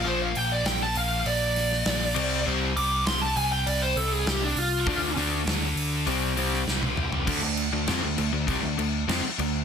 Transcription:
<<
  \new Staff \with { instrumentName = "Lead electric guitar" } { \time 4/4 \key d \minor \tempo 4 = 100 c''16 f''16 g''16 d''16 g''16 a''16 f''8 d''2 | r8 d'''8 c'''16 a''16 gis''16 g''16 d''16 c''16 a'16 gis'16 g'16 d'16 f'8~ | f'8 r2. r8 | r1 | }
  \new Staff \with { instrumentName = "Distorted electric guitar" } { \clef bass \time 4/4 \key d \minor <bes, f bes>8 r2. <c g c'>8 | <c g c'>8 r2. r8 | <d a d'>8 <d a d'>8 r4 <c g c'>8 <c g c'>8 r4 | <d a>16 <d a>8 <d a>16 <f c'>16 <d a>16 <d a>16 <d a>16 <c g>16 <d a>16 <d a>8 <f c'>16 r16 <d a>8 | }
  \new Staff \with { instrumentName = "Distorted electric guitar" } { \clef bass \time 4/4 \key d \minor <bes, f bes>2.~ <bes, f bes>8 <c g c'>8~ | <c g c'>2.~ <c g c'>8 r8 | <d a d'>2 <c g c'>2 | <d a>16 <d a>8 <d a>16 <f c'>16 <d a>16 <d a>16 <d a>16 <c g>16 <d a>16 <d a>8 <f c'>16 r16 <d a>8 | }
  \new Staff \with { instrumentName = "Overdriven electric guitar" } { \clef bass \time 4/4 \key d \minor <bes, f bes>8 r2. <c g c'>8 | <c g c'>8 r2. r8 | <d a d'>8 <d a d'>8 r4 <c g c'>8 <c g c'>8 r4 | <d a>16 <d a>8 <d a>16 <f c'>16 <d a>16 <d a>16 <d a>16 <c g>16 <d a>16 <d a>8 <f c'>16 r16 <d a>8 | }
  \new Staff \with { instrumentName = "Picked electric bass" } { \clef bass \time 4/4 \key d \minor bes,,8 bes,,8 bes,,8 bes,,8 bes,,4 bes,,8 c,8 | c,8 c,8 c,8 c,8 c,8 c,8 c,8 c,8 | d,8 d,8 d,8 d,8 c,4 c,8 c,8 | d,16 d,8 d,16 f,16 d,16 d,16 d,16 c,16 d,16 d,8 f,16 r16 d,8 | }
  \new DrumStaff \with { instrumentName = "Drums" } \drummode { \time 4/4 r8 hho8 <hho sn>8 hho8 hho8 <hho sn>16 sn16 <hho sn>8 cymc8 | r8 hho8 <hho sn>8 hho8 hho8 hho8 <hho sn>8 hho8 | bd8 hho8 <hho sn>8 hho8 hho8 hho16 sn16 sn16 tommh16 toml16 tomfh16 | <cymc bd>8 cymc8 <cymc sn>8 cymc8 <cymc bd>8 cymc8 <cymc sn>8 cymc8 | }
>>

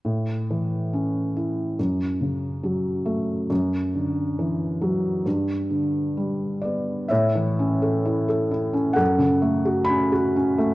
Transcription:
<<
  \new Staff \with { instrumentName = "Felt piano" } { \time 4/4 \key a \major \tempo 4 = 67 << { r1 | r2. r8 d''8 | e''2 fis''4 b''4 | } \\ { r1 | r1 | cis''2 a'2 | } >> }
  \new Staff \with { instrumentName = "Felt piano" } { \clef bass \time 4/4 \key a \major a,8 e8 cis'8 e'8 fis,8 cis8 fis8 a8 | fis,8 d8 e8 fis8 g,8 d8 g8 b8 | a,16 e16 cis'16 a'16 e'16 a'16 e'16 cis'16 fis,16 cis16 a16 fis'16 cis'16 fis'16 cis'16 a16 | }
>>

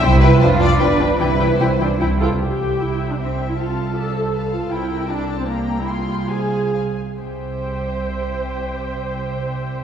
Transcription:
<<
  \new Staff \with { instrumentName = "Violin section" } { \time 3/4 \key c \major \tempo 4 = 149 g''8 g''8 a''8 a''8 g''8 g''8 | g''8 g''8 g''8 g''8 g''8 g''8 | g''2 e''4 | a''4 a''4 a''4 |
g''4 a''4 bes''4 | c'''4 aes''4 aes''8 r8 | g''2.~ | g''2. | }
  \new Staff \with { instrumentName = "Violin section" } { \time 3/4 \key c \major << { c''8 b'8 c''8 d''8 b'4 | b'4 c''4 r4 | e''2 g''4 | f''4 e''4 f''4 |
g''2 g''4~ | g''4 f''4 f''8 r8 | e''2.~ | e''2. | } \\ { r2. | r2. | c''2. | a'4 d''8 c''8 b'8 a'8 |
c''8 bes'8 a'4 g'4 | aes'8 aes'8 c''4 c''8 r8 | g'2.~ | g'2. | } >> }
  \new Staff \with { instrumentName = "Cello section" } { \time 3/4 \key c \major e'4 f'4 d'4 | e'4 e'8 d'8 e'8 f'8 | c,2.~ | c,2. |
c,2.~ | c,2~ c,8 r8 | c,2.~ | c,2. | }
  \new Staff \with { instrumentName = "Viola section" } { \time 3/4 \key c \major <g e'>8 <g e'>8 <f d'>8 <f d'>8 <f d'>8 <f d'>8 | <e e'>8 <e e'>8 <e e'>8 <e e'>8 <e e'>8 <e e' a'>8 | g'4 e'8. d'16 c'8. e'16 | f'4 a'4 r8 f'8 |
e'4 d'8. c'16 bes8. e'16 | f'4 aes'4 r4 | c''2.~ | c''2. | }
  \new Staff \with { instrumentName = "Double bass section" } { \clef bass \time 3/4 \key c \major c,4 f,,4 g,,4 | c,4 c,4 c,4 | c,2.~ | c,2. |
c,2.~ | c,2~ c,8 r8 | c,2.~ | c,2. | }
>>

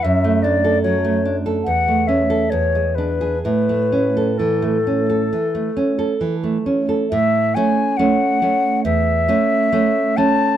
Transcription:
<<
  \new Staff \with { instrumentName = "Flute" } { \time 4/4 \key a \major \tempo 4 = 68 e''8 d''8 cis''8 r8 fis''8 e''8 cis''8 b'8 | b'4 a'2 r4 | e''8 gis''8 fis''4 e''4. a''8 | }
  \new Staff \with { instrumentName = "Nylon-string guitar" } { \time 4/4 \key a \major fis,16 a16 d'16 a'16 fis16 a16 d'16 a'16 e,16 a16 cis'16 a'16 e,16 gis16 d'16 gis'16 | a,16 a16 cis'16 a'16 e16 a16 cis'16 a'16 e16 a16 cis'16 a'16 e16 a16 cis'16 a'16 | a,8 <a cis'>8 <a cis'>8 <a cis'>8 e,8 <a cis'>8 <a cis'>8 <a cis'>8 | }
>>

